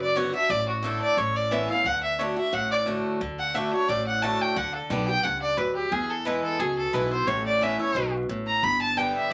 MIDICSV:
0, 0, Header, 1, 4, 480
1, 0, Start_track
1, 0, Key_signature, 2, "major"
1, 0, Tempo, 338983
1, 704, Time_signature, 4, 2, 24, 8
1, 13213, End_track
2, 0, Start_track
2, 0, Title_t, "Fiddle"
2, 0, Program_c, 0, 110
2, 8, Note_on_c, 0, 74, 101
2, 228, Note_on_c, 0, 73, 84
2, 250, Note_off_c, 0, 74, 0
2, 475, Note_off_c, 0, 73, 0
2, 483, Note_on_c, 0, 76, 113
2, 704, Note_on_c, 0, 74, 104
2, 726, Note_off_c, 0, 76, 0
2, 957, Note_off_c, 0, 74, 0
2, 966, Note_on_c, 0, 66, 52
2, 1187, Note_on_c, 0, 69, 74
2, 1208, Note_off_c, 0, 66, 0
2, 1425, Note_off_c, 0, 69, 0
2, 1433, Note_on_c, 0, 74, 106
2, 1661, Note_on_c, 0, 73, 91
2, 1682, Note_off_c, 0, 74, 0
2, 1927, Note_on_c, 0, 74, 88
2, 1948, Note_off_c, 0, 73, 0
2, 2149, Note_on_c, 0, 76, 82
2, 2170, Note_off_c, 0, 74, 0
2, 2390, Note_off_c, 0, 76, 0
2, 2399, Note_on_c, 0, 77, 98
2, 2634, Note_on_c, 0, 78, 103
2, 2655, Note_off_c, 0, 77, 0
2, 2863, Note_off_c, 0, 78, 0
2, 2872, Note_on_c, 0, 76, 87
2, 3098, Note_on_c, 0, 73, 64
2, 3120, Note_off_c, 0, 76, 0
2, 3355, Note_off_c, 0, 73, 0
2, 3364, Note_on_c, 0, 76, 90
2, 3589, Note_on_c, 0, 78, 94
2, 3611, Note_off_c, 0, 76, 0
2, 3832, Note_off_c, 0, 78, 0
2, 3840, Note_on_c, 0, 74, 93
2, 3975, Note_off_c, 0, 74, 0
2, 4797, Note_on_c, 0, 78, 94
2, 5021, Note_on_c, 0, 76, 77
2, 5043, Note_off_c, 0, 78, 0
2, 5266, Note_off_c, 0, 76, 0
2, 5274, Note_on_c, 0, 73, 98
2, 5500, Note_on_c, 0, 74, 92
2, 5521, Note_off_c, 0, 73, 0
2, 5747, Note_off_c, 0, 74, 0
2, 5756, Note_on_c, 0, 78, 94
2, 5977, Note_on_c, 0, 81, 93
2, 5998, Note_off_c, 0, 78, 0
2, 6245, Note_on_c, 0, 79, 92
2, 6267, Note_off_c, 0, 81, 0
2, 6465, Note_on_c, 0, 78, 96
2, 6486, Note_off_c, 0, 79, 0
2, 6708, Note_off_c, 0, 78, 0
2, 6717, Note_on_c, 0, 69, 48
2, 6937, Note_on_c, 0, 74, 76
2, 6959, Note_off_c, 0, 69, 0
2, 7177, Note_off_c, 0, 74, 0
2, 7186, Note_on_c, 0, 79, 115
2, 7408, Note_on_c, 0, 78, 95
2, 7430, Note_off_c, 0, 79, 0
2, 7662, Note_off_c, 0, 78, 0
2, 7671, Note_on_c, 0, 74, 96
2, 7891, Note_on_c, 0, 71, 85
2, 7912, Note_off_c, 0, 74, 0
2, 8139, Note_off_c, 0, 71, 0
2, 8148, Note_on_c, 0, 67, 80
2, 8377, Note_on_c, 0, 68, 88
2, 8398, Note_off_c, 0, 67, 0
2, 8639, Note_on_c, 0, 69, 83
2, 8661, Note_off_c, 0, 68, 0
2, 8864, Note_on_c, 0, 71, 85
2, 8885, Note_off_c, 0, 69, 0
2, 9110, Note_off_c, 0, 71, 0
2, 9119, Note_on_c, 0, 69, 90
2, 9338, Note_on_c, 0, 68, 82
2, 9359, Note_off_c, 0, 69, 0
2, 9588, Note_off_c, 0, 68, 0
2, 9597, Note_on_c, 0, 69, 88
2, 9823, Note_on_c, 0, 71, 83
2, 9844, Note_off_c, 0, 69, 0
2, 10072, Note_off_c, 0, 71, 0
2, 10080, Note_on_c, 0, 72, 95
2, 10293, Note_on_c, 0, 73, 86
2, 10314, Note_off_c, 0, 72, 0
2, 10552, Note_off_c, 0, 73, 0
2, 10560, Note_on_c, 0, 74, 85
2, 10797, Note_on_c, 0, 76, 76
2, 10818, Note_off_c, 0, 74, 0
2, 11036, Note_off_c, 0, 76, 0
2, 11044, Note_on_c, 0, 73, 93
2, 11489, Note_off_c, 0, 73, 0
2, 11990, Note_on_c, 0, 82, 93
2, 12223, Note_on_c, 0, 83, 110
2, 12244, Note_off_c, 0, 82, 0
2, 12469, Note_off_c, 0, 83, 0
2, 12477, Note_on_c, 0, 81, 104
2, 12703, Note_on_c, 0, 79, 78
2, 12724, Note_off_c, 0, 81, 0
2, 12953, Note_off_c, 0, 79, 0
2, 12961, Note_on_c, 0, 76, 84
2, 13198, Note_off_c, 0, 76, 0
2, 13213, End_track
3, 0, Start_track
3, 0, Title_t, "Steel-string acoustic guitar"
3, 0, Program_c, 1, 25
3, 0, Note_on_c, 1, 42, 94
3, 219, Note_on_c, 1, 50, 90
3, 234, Note_on_c, 1, 59, 88
3, 242, Note_on_c, 1, 62, 103
3, 252, Note_on_c, 1, 66, 97
3, 458, Note_off_c, 1, 66, 0
3, 467, Note_off_c, 1, 50, 0
3, 475, Note_off_c, 1, 59, 0
3, 475, Note_on_c, 1, 66, 62
3, 479, Note_off_c, 1, 62, 0
3, 509, Note_on_c, 1, 62, 55
3, 662, Note_off_c, 1, 42, 0
3, 692, Note_off_c, 1, 66, 0
3, 703, Note_on_c, 1, 45, 76
3, 709, Note_off_c, 1, 62, 0
3, 1171, Note_on_c, 1, 50, 81
3, 1189, Note_on_c, 1, 57, 79
3, 1199, Note_on_c, 1, 62, 86
3, 1210, Note_on_c, 1, 64, 95
3, 1618, Note_off_c, 1, 45, 0
3, 1635, Note_off_c, 1, 50, 0
3, 1644, Note_off_c, 1, 57, 0
3, 1649, Note_off_c, 1, 62, 0
3, 1654, Note_off_c, 1, 64, 0
3, 1667, Note_on_c, 1, 45, 92
3, 2138, Note_on_c, 1, 52, 90
3, 2152, Note_on_c, 1, 59, 87
3, 2164, Note_on_c, 1, 61, 87
3, 2171, Note_on_c, 1, 64, 103
3, 2386, Note_off_c, 1, 64, 0
3, 2387, Note_off_c, 1, 52, 0
3, 2394, Note_off_c, 1, 59, 0
3, 2401, Note_off_c, 1, 61, 0
3, 2403, Note_on_c, 1, 64, 61
3, 2438, Note_on_c, 1, 61, 50
3, 2581, Note_off_c, 1, 45, 0
3, 2616, Note_off_c, 1, 64, 0
3, 2626, Note_on_c, 1, 50, 78
3, 2634, Note_off_c, 1, 61, 0
3, 3082, Note_off_c, 1, 50, 0
3, 3099, Note_on_c, 1, 50, 80
3, 3108, Note_on_c, 1, 57, 77
3, 3124, Note_on_c, 1, 62, 92
3, 3130, Note_on_c, 1, 66, 96
3, 3331, Note_off_c, 1, 66, 0
3, 3348, Note_off_c, 1, 50, 0
3, 3348, Note_on_c, 1, 66, 57
3, 3353, Note_off_c, 1, 57, 0
3, 3361, Note_off_c, 1, 62, 0
3, 3383, Note_on_c, 1, 62, 46
3, 3569, Note_off_c, 1, 66, 0
3, 3578, Note_on_c, 1, 45, 81
3, 3587, Note_off_c, 1, 62, 0
3, 4045, Note_on_c, 1, 50, 79
3, 4061, Note_on_c, 1, 57, 82
3, 4071, Note_on_c, 1, 62, 85
3, 4082, Note_on_c, 1, 66, 101
3, 4498, Note_off_c, 1, 45, 0
3, 4514, Note_off_c, 1, 50, 0
3, 4521, Note_off_c, 1, 57, 0
3, 4526, Note_off_c, 1, 62, 0
3, 4532, Note_off_c, 1, 66, 0
3, 4544, Note_on_c, 1, 50, 77
3, 4997, Note_off_c, 1, 50, 0
3, 5014, Note_on_c, 1, 50, 79
3, 5025, Note_on_c, 1, 57, 83
3, 5038, Note_on_c, 1, 62, 88
3, 5051, Note_on_c, 1, 66, 93
3, 5262, Note_off_c, 1, 66, 0
3, 5267, Note_off_c, 1, 50, 0
3, 5272, Note_off_c, 1, 57, 0
3, 5279, Note_off_c, 1, 62, 0
3, 5279, Note_on_c, 1, 66, 57
3, 5313, Note_on_c, 1, 62, 54
3, 5496, Note_off_c, 1, 66, 0
3, 5513, Note_off_c, 1, 62, 0
3, 5513, Note_on_c, 1, 45, 89
3, 5980, Note_on_c, 1, 50, 82
3, 5994, Note_on_c, 1, 57, 103
3, 6005, Note_on_c, 1, 62, 94
3, 6014, Note_on_c, 1, 66, 93
3, 6426, Note_off_c, 1, 45, 0
3, 6442, Note_off_c, 1, 50, 0
3, 6449, Note_off_c, 1, 57, 0
3, 6454, Note_off_c, 1, 62, 0
3, 6459, Note_off_c, 1, 66, 0
3, 6463, Note_on_c, 1, 50, 87
3, 6923, Note_off_c, 1, 50, 0
3, 6940, Note_on_c, 1, 50, 85
3, 6949, Note_on_c, 1, 55, 86
3, 6965, Note_on_c, 1, 59, 93
3, 6972, Note_on_c, 1, 67, 94
3, 7180, Note_off_c, 1, 67, 0
3, 7190, Note_off_c, 1, 50, 0
3, 7195, Note_off_c, 1, 55, 0
3, 7197, Note_on_c, 1, 67, 58
3, 7203, Note_off_c, 1, 59, 0
3, 7234, Note_on_c, 1, 59, 52
3, 7415, Note_off_c, 1, 67, 0
3, 7427, Note_on_c, 1, 43, 90
3, 7434, Note_off_c, 1, 59, 0
3, 7885, Note_off_c, 1, 43, 0
3, 7899, Note_on_c, 1, 42, 85
3, 8361, Note_off_c, 1, 42, 0
3, 8382, Note_on_c, 1, 40, 80
3, 8854, Note_on_c, 1, 52, 81
3, 8869, Note_on_c, 1, 56, 85
3, 8880, Note_on_c, 1, 59, 91
3, 8887, Note_on_c, 1, 64, 91
3, 9300, Note_off_c, 1, 40, 0
3, 9318, Note_off_c, 1, 52, 0
3, 9326, Note_off_c, 1, 56, 0
3, 9331, Note_off_c, 1, 59, 0
3, 9335, Note_off_c, 1, 64, 0
3, 9343, Note_on_c, 1, 47, 91
3, 9815, Note_on_c, 1, 52, 91
3, 9829, Note_on_c, 1, 56, 97
3, 9838, Note_on_c, 1, 59, 96
3, 9844, Note_on_c, 1, 64, 98
3, 10056, Note_off_c, 1, 64, 0
3, 10067, Note_off_c, 1, 52, 0
3, 10073, Note_on_c, 1, 64, 61
3, 10074, Note_off_c, 1, 56, 0
3, 10079, Note_off_c, 1, 59, 0
3, 10107, Note_on_c, 1, 59, 49
3, 10260, Note_off_c, 1, 47, 0
3, 10292, Note_off_c, 1, 64, 0
3, 10304, Note_on_c, 1, 45, 88
3, 10309, Note_off_c, 1, 59, 0
3, 10776, Note_on_c, 1, 52, 83
3, 10789, Note_on_c, 1, 59, 82
3, 10799, Note_on_c, 1, 61, 95
3, 10808, Note_on_c, 1, 64, 95
3, 11019, Note_off_c, 1, 64, 0
3, 11027, Note_off_c, 1, 52, 0
3, 11033, Note_off_c, 1, 59, 0
3, 11036, Note_on_c, 1, 64, 61
3, 11038, Note_off_c, 1, 61, 0
3, 11070, Note_on_c, 1, 61, 47
3, 11220, Note_off_c, 1, 45, 0
3, 11253, Note_off_c, 1, 64, 0
3, 11270, Note_on_c, 1, 47, 83
3, 11271, Note_off_c, 1, 61, 0
3, 11725, Note_off_c, 1, 47, 0
3, 11744, Note_on_c, 1, 45, 84
3, 12201, Note_off_c, 1, 45, 0
3, 12226, Note_on_c, 1, 43, 79
3, 12697, Note_on_c, 1, 50, 93
3, 12712, Note_on_c, 1, 55, 85
3, 12720, Note_on_c, 1, 59, 90
3, 12733, Note_on_c, 1, 67, 88
3, 13139, Note_off_c, 1, 43, 0
3, 13157, Note_off_c, 1, 50, 0
3, 13164, Note_off_c, 1, 55, 0
3, 13168, Note_off_c, 1, 59, 0
3, 13175, Note_off_c, 1, 67, 0
3, 13213, End_track
4, 0, Start_track
4, 0, Title_t, "Upright bass"
4, 0, Program_c, 2, 32
4, 0, Note_on_c, 2, 30, 90
4, 410, Note_off_c, 2, 30, 0
4, 702, Note_on_c, 2, 33, 93
4, 1371, Note_off_c, 2, 33, 0
4, 1658, Note_on_c, 2, 33, 92
4, 2329, Note_off_c, 2, 33, 0
4, 2611, Note_on_c, 2, 38, 88
4, 3285, Note_off_c, 2, 38, 0
4, 3578, Note_on_c, 2, 33, 77
4, 4250, Note_off_c, 2, 33, 0
4, 4537, Note_on_c, 2, 38, 86
4, 5209, Note_off_c, 2, 38, 0
4, 5502, Note_on_c, 2, 33, 84
4, 6172, Note_off_c, 2, 33, 0
4, 6458, Note_on_c, 2, 38, 90
4, 6796, Note_off_c, 2, 38, 0
4, 6940, Note_on_c, 2, 35, 95
4, 7351, Note_off_c, 2, 35, 0
4, 7422, Note_on_c, 2, 37, 82
4, 7833, Note_off_c, 2, 37, 0
4, 7894, Note_on_c, 2, 38, 79
4, 8308, Note_off_c, 2, 38, 0
4, 8378, Note_on_c, 2, 40, 92
4, 9050, Note_off_c, 2, 40, 0
4, 9335, Note_on_c, 2, 37, 88
4, 9748, Note_off_c, 2, 37, 0
4, 9818, Note_on_c, 2, 35, 83
4, 10230, Note_off_c, 2, 35, 0
4, 10293, Note_on_c, 2, 33, 92
4, 10966, Note_off_c, 2, 33, 0
4, 11255, Note_on_c, 2, 35, 76
4, 11667, Note_off_c, 2, 35, 0
4, 11735, Note_on_c, 2, 33, 73
4, 12146, Note_off_c, 2, 33, 0
4, 12217, Note_on_c, 2, 31, 96
4, 12887, Note_off_c, 2, 31, 0
4, 13213, End_track
0, 0, End_of_file